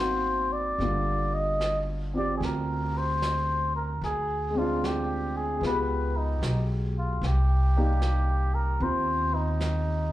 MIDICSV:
0, 0, Header, 1, 5, 480
1, 0, Start_track
1, 0, Key_signature, -3, "minor"
1, 0, Tempo, 806452
1, 478, Time_signature, 4, 2, 24, 8
1, 2873, Tempo, 793651
1, 6075, End_track
2, 0, Start_track
2, 0, Title_t, "Muted trumpet"
2, 0, Program_c, 0, 59
2, 0, Note_on_c, 0, 72, 67
2, 312, Note_on_c, 0, 74, 62
2, 321, Note_off_c, 0, 72, 0
2, 799, Note_on_c, 0, 75, 64
2, 808, Note_off_c, 0, 74, 0
2, 1068, Note_off_c, 0, 75, 0
2, 1293, Note_on_c, 0, 74, 70
2, 1408, Note_off_c, 0, 74, 0
2, 1412, Note_on_c, 0, 68, 52
2, 1458, Note_on_c, 0, 70, 65
2, 1467, Note_off_c, 0, 68, 0
2, 1772, Note_on_c, 0, 72, 64
2, 1781, Note_off_c, 0, 70, 0
2, 2234, Note_off_c, 0, 72, 0
2, 2238, Note_on_c, 0, 70, 57
2, 2388, Note_off_c, 0, 70, 0
2, 2406, Note_on_c, 0, 68, 67
2, 2725, Note_on_c, 0, 65, 59
2, 2734, Note_off_c, 0, 68, 0
2, 2887, Note_on_c, 0, 67, 63
2, 2896, Note_off_c, 0, 65, 0
2, 3200, Note_on_c, 0, 68, 67
2, 3209, Note_off_c, 0, 67, 0
2, 3360, Note_off_c, 0, 68, 0
2, 3376, Note_on_c, 0, 71, 62
2, 3688, Note_on_c, 0, 63, 58
2, 3697, Note_off_c, 0, 71, 0
2, 3950, Note_off_c, 0, 63, 0
2, 4178, Note_on_c, 0, 65, 55
2, 4343, Note_on_c, 0, 67, 66
2, 4352, Note_off_c, 0, 65, 0
2, 5121, Note_on_c, 0, 70, 72
2, 5131, Note_off_c, 0, 67, 0
2, 5294, Note_on_c, 0, 72, 74
2, 5303, Note_off_c, 0, 70, 0
2, 5607, Note_on_c, 0, 63, 63
2, 5616, Note_off_c, 0, 72, 0
2, 6075, Note_off_c, 0, 63, 0
2, 6075, End_track
3, 0, Start_track
3, 0, Title_t, "Grand piano"
3, 0, Program_c, 1, 0
3, 0, Control_c, 1, 64, 127
3, 0, Note_on_c, 1, 58, 38
3, 0, Note_on_c, 1, 60, 33
3, 0, Note_on_c, 1, 63, 31
3, 0, Note_on_c, 1, 66, 40
3, 466, Note_off_c, 1, 58, 0
3, 475, Note_on_c, 1, 55, 35
3, 476, Note_off_c, 1, 60, 0
3, 480, Note_on_c, 1, 58, 29
3, 485, Control_c, 1, 64, 0
3, 485, Note_on_c, 1, 50, 32
3, 486, Note_off_c, 1, 63, 0
3, 488, Note_on_c, 1, 65, 38
3, 498, Note_off_c, 1, 66, 0
3, 586, Control_c, 1, 64, 127
3, 1269, Note_off_c, 1, 65, 0
3, 1272, Note_on_c, 1, 60, 32
3, 1278, Note_on_c, 1, 65, 31
3, 1294, Note_on_c, 1, 67, 36
3, 2392, Note_off_c, 1, 60, 0
3, 2395, Note_off_c, 1, 55, 0
3, 2396, Note_off_c, 1, 65, 0
3, 2398, Note_off_c, 1, 58, 0
3, 2400, Note_off_c, 1, 50, 0
3, 2404, Note_off_c, 1, 67, 0
3, 2404, Control_c, 1, 64, 0
3, 2524, Control_c, 1, 64, 127
3, 2680, Note_on_c, 1, 56, 41
3, 2705, Note_on_c, 1, 60, 41
3, 2724, Note_on_c, 1, 62, 38
3, 2742, Note_on_c, 1, 65, 46
3, 3312, Note_off_c, 1, 56, 0
3, 3321, Note_on_c, 1, 56, 37
3, 3353, Note_off_c, 1, 60, 0
3, 3353, Note_on_c, 1, 59, 33
3, 3357, Note_off_c, 1, 65, 0
3, 3362, Note_off_c, 1, 62, 0
3, 3365, Control_c, 1, 64, 0
3, 3366, Note_on_c, 1, 65, 34
3, 3392, Note_on_c, 1, 67, 41
3, 3483, Control_c, 1, 64, 127
3, 4300, Note_off_c, 1, 56, 0
3, 4316, Note_off_c, 1, 59, 0
3, 4322, Note_off_c, 1, 65, 0
3, 4324, Control_c, 1, 64, 0
3, 4336, Note_off_c, 1, 67, 0
3, 4447, Control_c, 1, 64, 127
3, 4650, Note_on_c, 1, 74, 35
3, 4654, Note_on_c, 1, 58, 43
3, 4657, Note_on_c, 1, 63, 39
3, 4658, Note_on_c, 1, 67, 49
3, 5281, Note_on_c, 1, 60, 33
3, 5295, Note_on_c, 1, 65, 35
3, 6075, Note_off_c, 1, 58, 0
3, 6075, Note_off_c, 1, 60, 0
3, 6075, Note_off_c, 1, 63, 0
3, 6075, Note_off_c, 1, 65, 0
3, 6075, Note_off_c, 1, 67, 0
3, 6075, Note_off_c, 1, 74, 0
3, 6075, End_track
4, 0, Start_track
4, 0, Title_t, "Upright bass"
4, 0, Program_c, 2, 32
4, 0, Note_on_c, 2, 32, 58
4, 452, Note_off_c, 2, 32, 0
4, 467, Note_on_c, 2, 31, 58
4, 1411, Note_off_c, 2, 31, 0
4, 1431, Note_on_c, 2, 38, 60
4, 2369, Note_off_c, 2, 38, 0
4, 2389, Note_on_c, 2, 38, 61
4, 3328, Note_off_c, 2, 38, 0
4, 3344, Note_on_c, 2, 37, 59
4, 3806, Note_off_c, 2, 37, 0
4, 3833, Note_on_c, 2, 35, 53
4, 4292, Note_off_c, 2, 35, 0
4, 4317, Note_on_c, 2, 36, 68
4, 5251, Note_off_c, 2, 36, 0
4, 5278, Note_on_c, 2, 39, 66
4, 6047, Note_off_c, 2, 39, 0
4, 6075, End_track
5, 0, Start_track
5, 0, Title_t, "Drums"
5, 476, Note_on_c, 9, 25, 30
5, 476, Note_on_c, 9, 38, 18
5, 535, Note_off_c, 9, 38, 0
5, 956, Note_on_c, 9, 38, 30
5, 956, Note_on_c, 9, 44, 37
5, 1015, Note_off_c, 9, 38, 0
5, 1015, Note_off_c, 9, 44, 0
5, 1442, Note_off_c, 9, 25, 0
5, 1442, Note_on_c, 9, 25, 33
5, 1442, Note_on_c, 9, 38, 21
5, 1501, Note_off_c, 9, 38, 0
5, 1917, Note_on_c, 9, 38, 32
5, 1917, Note_on_c, 9, 44, 49
5, 1977, Note_off_c, 9, 38, 0
5, 1977, Note_off_c, 9, 44, 0
5, 2402, Note_off_c, 9, 25, 0
5, 2402, Note_on_c, 9, 25, 25
5, 2402, Note_on_c, 9, 38, 20
5, 2461, Note_off_c, 9, 38, 0
5, 2880, Note_on_c, 9, 38, 31
5, 2880, Note_on_c, 9, 44, 34
5, 2940, Note_off_c, 9, 38, 0
5, 2940, Note_off_c, 9, 44, 0
5, 3359, Note_off_c, 9, 25, 0
5, 3359, Note_on_c, 9, 25, 30
5, 3359, Note_on_c, 9, 38, 21
5, 3420, Note_off_c, 9, 38, 0
5, 3840, Note_on_c, 9, 38, 31
5, 3840, Note_on_c, 9, 44, 48
5, 3901, Note_off_c, 9, 38, 0
5, 3901, Note_off_c, 9, 44, 0
5, 4325, Note_off_c, 9, 25, 0
5, 4325, Note_on_c, 9, 25, 25
5, 4325, Note_on_c, 9, 38, 21
5, 4386, Note_off_c, 9, 38, 0
5, 4802, Note_on_c, 9, 38, 31
5, 4802, Note_on_c, 9, 44, 40
5, 4863, Note_off_c, 9, 38, 0
5, 4863, Note_off_c, 9, 44, 0
5, 5284, Note_off_c, 9, 25, 0
5, 5284, Note_on_c, 9, 25, 30
5, 5762, Note_on_c, 9, 38, 33
5, 5762, Note_on_c, 9, 44, 45
5, 5823, Note_off_c, 9, 38, 0
5, 5823, Note_off_c, 9, 44, 0
5, 6075, Note_off_c, 9, 25, 0
5, 6075, End_track
0, 0, End_of_file